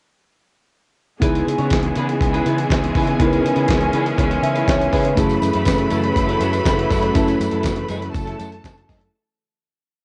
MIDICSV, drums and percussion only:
0, 0, Header, 1, 2, 480
1, 0, Start_track
1, 0, Key_signature, 4, "minor"
1, 0, Tempo, 495050
1, 1183, Time_signature, 4, 2, 24, 8
1, 9744, End_track
2, 0, Start_track
2, 0, Title_t, "Drums"
2, 1182, Note_on_c, 9, 36, 116
2, 1185, Note_on_c, 9, 42, 87
2, 1279, Note_off_c, 9, 36, 0
2, 1282, Note_off_c, 9, 42, 0
2, 1313, Note_on_c, 9, 42, 48
2, 1410, Note_off_c, 9, 42, 0
2, 1440, Note_on_c, 9, 42, 74
2, 1537, Note_off_c, 9, 42, 0
2, 1537, Note_on_c, 9, 42, 45
2, 1634, Note_off_c, 9, 42, 0
2, 1652, Note_on_c, 9, 42, 79
2, 1657, Note_on_c, 9, 36, 98
2, 1677, Note_on_c, 9, 38, 91
2, 1749, Note_off_c, 9, 42, 0
2, 1754, Note_off_c, 9, 36, 0
2, 1772, Note_on_c, 9, 42, 43
2, 1774, Note_off_c, 9, 38, 0
2, 1869, Note_off_c, 9, 42, 0
2, 1896, Note_on_c, 9, 42, 62
2, 1993, Note_off_c, 9, 42, 0
2, 2025, Note_on_c, 9, 42, 36
2, 2122, Note_off_c, 9, 42, 0
2, 2140, Note_on_c, 9, 36, 102
2, 2152, Note_on_c, 9, 42, 72
2, 2237, Note_off_c, 9, 36, 0
2, 2249, Note_off_c, 9, 42, 0
2, 2269, Note_on_c, 9, 42, 45
2, 2366, Note_off_c, 9, 42, 0
2, 2384, Note_on_c, 9, 42, 65
2, 2481, Note_off_c, 9, 42, 0
2, 2503, Note_on_c, 9, 42, 48
2, 2600, Note_off_c, 9, 42, 0
2, 2619, Note_on_c, 9, 36, 99
2, 2627, Note_on_c, 9, 42, 74
2, 2632, Note_on_c, 9, 38, 116
2, 2716, Note_off_c, 9, 36, 0
2, 2724, Note_off_c, 9, 42, 0
2, 2729, Note_off_c, 9, 38, 0
2, 2750, Note_on_c, 9, 42, 48
2, 2847, Note_off_c, 9, 42, 0
2, 2860, Note_on_c, 9, 36, 93
2, 2864, Note_on_c, 9, 46, 62
2, 2957, Note_off_c, 9, 36, 0
2, 2961, Note_off_c, 9, 46, 0
2, 2978, Note_on_c, 9, 42, 45
2, 3075, Note_off_c, 9, 42, 0
2, 3098, Note_on_c, 9, 36, 103
2, 3099, Note_on_c, 9, 42, 91
2, 3195, Note_off_c, 9, 36, 0
2, 3196, Note_off_c, 9, 42, 0
2, 3226, Note_on_c, 9, 42, 43
2, 3323, Note_off_c, 9, 42, 0
2, 3351, Note_on_c, 9, 42, 72
2, 3448, Note_off_c, 9, 42, 0
2, 3450, Note_on_c, 9, 42, 49
2, 3547, Note_off_c, 9, 42, 0
2, 3567, Note_on_c, 9, 42, 82
2, 3574, Note_on_c, 9, 36, 109
2, 3591, Note_on_c, 9, 38, 99
2, 3664, Note_off_c, 9, 42, 0
2, 3671, Note_off_c, 9, 36, 0
2, 3688, Note_off_c, 9, 38, 0
2, 3691, Note_on_c, 9, 42, 43
2, 3788, Note_off_c, 9, 42, 0
2, 3812, Note_on_c, 9, 42, 62
2, 3909, Note_off_c, 9, 42, 0
2, 3938, Note_on_c, 9, 42, 41
2, 4035, Note_off_c, 9, 42, 0
2, 4055, Note_on_c, 9, 36, 100
2, 4063, Note_on_c, 9, 42, 78
2, 4152, Note_off_c, 9, 36, 0
2, 4160, Note_off_c, 9, 42, 0
2, 4179, Note_on_c, 9, 42, 46
2, 4276, Note_off_c, 9, 42, 0
2, 4300, Note_on_c, 9, 42, 66
2, 4397, Note_off_c, 9, 42, 0
2, 4417, Note_on_c, 9, 42, 50
2, 4514, Note_off_c, 9, 42, 0
2, 4535, Note_on_c, 9, 36, 104
2, 4542, Note_on_c, 9, 42, 71
2, 4547, Note_on_c, 9, 38, 121
2, 4632, Note_off_c, 9, 36, 0
2, 4639, Note_off_c, 9, 42, 0
2, 4644, Note_off_c, 9, 38, 0
2, 4667, Note_on_c, 9, 42, 51
2, 4764, Note_off_c, 9, 42, 0
2, 4776, Note_on_c, 9, 36, 92
2, 4782, Note_on_c, 9, 46, 70
2, 4873, Note_off_c, 9, 36, 0
2, 4879, Note_off_c, 9, 46, 0
2, 4893, Note_on_c, 9, 42, 48
2, 4990, Note_off_c, 9, 42, 0
2, 5014, Note_on_c, 9, 36, 108
2, 5014, Note_on_c, 9, 42, 98
2, 5019, Note_on_c, 9, 54, 46
2, 5111, Note_off_c, 9, 36, 0
2, 5111, Note_off_c, 9, 42, 0
2, 5116, Note_off_c, 9, 54, 0
2, 5132, Note_on_c, 9, 54, 39
2, 5145, Note_on_c, 9, 42, 41
2, 5229, Note_off_c, 9, 54, 0
2, 5242, Note_off_c, 9, 42, 0
2, 5254, Note_on_c, 9, 54, 60
2, 5267, Note_on_c, 9, 42, 73
2, 5351, Note_off_c, 9, 54, 0
2, 5364, Note_off_c, 9, 42, 0
2, 5365, Note_on_c, 9, 42, 49
2, 5366, Note_on_c, 9, 54, 30
2, 5462, Note_off_c, 9, 42, 0
2, 5463, Note_off_c, 9, 54, 0
2, 5481, Note_on_c, 9, 42, 79
2, 5489, Note_on_c, 9, 36, 93
2, 5495, Note_on_c, 9, 54, 91
2, 5506, Note_on_c, 9, 38, 97
2, 5578, Note_off_c, 9, 42, 0
2, 5586, Note_off_c, 9, 36, 0
2, 5592, Note_off_c, 9, 54, 0
2, 5603, Note_off_c, 9, 38, 0
2, 5605, Note_on_c, 9, 42, 42
2, 5702, Note_off_c, 9, 42, 0
2, 5724, Note_on_c, 9, 42, 62
2, 5734, Note_on_c, 9, 54, 55
2, 5821, Note_off_c, 9, 42, 0
2, 5830, Note_off_c, 9, 54, 0
2, 5852, Note_on_c, 9, 42, 42
2, 5949, Note_off_c, 9, 42, 0
2, 5972, Note_on_c, 9, 36, 96
2, 5976, Note_on_c, 9, 54, 58
2, 5982, Note_on_c, 9, 42, 74
2, 6069, Note_off_c, 9, 36, 0
2, 6073, Note_off_c, 9, 54, 0
2, 6079, Note_off_c, 9, 42, 0
2, 6096, Note_on_c, 9, 42, 46
2, 6193, Note_off_c, 9, 42, 0
2, 6212, Note_on_c, 9, 42, 70
2, 6218, Note_on_c, 9, 54, 53
2, 6309, Note_off_c, 9, 42, 0
2, 6315, Note_off_c, 9, 54, 0
2, 6332, Note_on_c, 9, 42, 54
2, 6338, Note_on_c, 9, 54, 44
2, 6429, Note_off_c, 9, 42, 0
2, 6435, Note_off_c, 9, 54, 0
2, 6452, Note_on_c, 9, 36, 116
2, 6454, Note_on_c, 9, 42, 72
2, 6456, Note_on_c, 9, 54, 105
2, 6459, Note_on_c, 9, 38, 106
2, 6549, Note_off_c, 9, 36, 0
2, 6551, Note_off_c, 9, 42, 0
2, 6553, Note_off_c, 9, 54, 0
2, 6556, Note_off_c, 9, 38, 0
2, 6583, Note_on_c, 9, 42, 46
2, 6680, Note_off_c, 9, 42, 0
2, 6695, Note_on_c, 9, 36, 92
2, 6699, Note_on_c, 9, 46, 63
2, 6707, Note_on_c, 9, 54, 53
2, 6792, Note_off_c, 9, 36, 0
2, 6796, Note_off_c, 9, 46, 0
2, 6804, Note_off_c, 9, 54, 0
2, 6811, Note_on_c, 9, 42, 47
2, 6908, Note_off_c, 9, 42, 0
2, 6932, Note_on_c, 9, 42, 87
2, 6934, Note_on_c, 9, 36, 123
2, 6943, Note_on_c, 9, 54, 50
2, 7029, Note_off_c, 9, 42, 0
2, 7031, Note_off_c, 9, 36, 0
2, 7039, Note_off_c, 9, 54, 0
2, 7054, Note_on_c, 9, 54, 35
2, 7061, Note_on_c, 9, 42, 47
2, 7151, Note_off_c, 9, 54, 0
2, 7158, Note_off_c, 9, 42, 0
2, 7180, Note_on_c, 9, 54, 64
2, 7184, Note_on_c, 9, 42, 67
2, 7277, Note_off_c, 9, 54, 0
2, 7281, Note_off_c, 9, 42, 0
2, 7285, Note_on_c, 9, 42, 42
2, 7382, Note_off_c, 9, 42, 0
2, 7401, Note_on_c, 9, 42, 80
2, 7410, Note_on_c, 9, 36, 97
2, 7423, Note_on_c, 9, 54, 103
2, 7425, Note_on_c, 9, 38, 92
2, 7498, Note_off_c, 9, 42, 0
2, 7507, Note_off_c, 9, 36, 0
2, 7520, Note_off_c, 9, 54, 0
2, 7522, Note_off_c, 9, 38, 0
2, 7526, Note_on_c, 9, 42, 44
2, 7623, Note_off_c, 9, 42, 0
2, 7647, Note_on_c, 9, 42, 65
2, 7659, Note_on_c, 9, 54, 54
2, 7744, Note_off_c, 9, 42, 0
2, 7756, Note_off_c, 9, 54, 0
2, 7780, Note_on_c, 9, 42, 41
2, 7877, Note_off_c, 9, 42, 0
2, 7898, Note_on_c, 9, 36, 111
2, 7901, Note_on_c, 9, 54, 61
2, 7909, Note_on_c, 9, 42, 69
2, 7995, Note_off_c, 9, 36, 0
2, 7998, Note_off_c, 9, 54, 0
2, 8006, Note_off_c, 9, 42, 0
2, 8023, Note_on_c, 9, 42, 43
2, 8120, Note_off_c, 9, 42, 0
2, 8141, Note_on_c, 9, 42, 65
2, 8147, Note_on_c, 9, 54, 60
2, 8238, Note_off_c, 9, 42, 0
2, 8244, Note_off_c, 9, 54, 0
2, 8264, Note_on_c, 9, 42, 49
2, 8361, Note_off_c, 9, 42, 0
2, 8380, Note_on_c, 9, 36, 117
2, 8386, Note_on_c, 9, 54, 96
2, 8388, Note_on_c, 9, 42, 76
2, 8393, Note_on_c, 9, 38, 118
2, 8477, Note_off_c, 9, 36, 0
2, 8483, Note_off_c, 9, 54, 0
2, 8485, Note_off_c, 9, 42, 0
2, 8490, Note_off_c, 9, 38, 0
2, 8512, Note_on_c, 9, 42, 50
2, 8609, Note_off_c, 9, 42, 0
2, 8623, Note_on_c, 9, 36, 105
2, 8629, Note_on_c, 9, 46, 66
2, 8632, Note_on_c, 9, 38, 30
2, 8633, Note_on_c, 9, 54, 52
2, 8720, Note_off_c, 9, 36, 0
2, 8726, Note_off_c, 9, 46, 0
2, 8729, Note_off_c, 9, 38, 0
2, 8730, Note_off_c, 9, 54, 0
2, 8741, Note_on_c, 9, 42, 47
2, 8838, Note_off_c, 9, 42, 0
2, 9744, End_track
0, 0, End_of_file